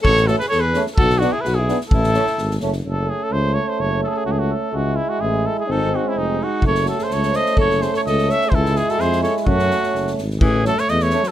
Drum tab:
SD |-oooo-oo|-oo-o-oo|-ooooooo|--------|
BD |o-------|o-------|o-------|--------|

SD |--------|--------|--------|-ooooooo|
BD |--------|--------|--------|o-------|

SD |-ooooooo|-ooooooo|-ooooooo|--oooooo|
BD |o-------|o-------|o-------|o-------|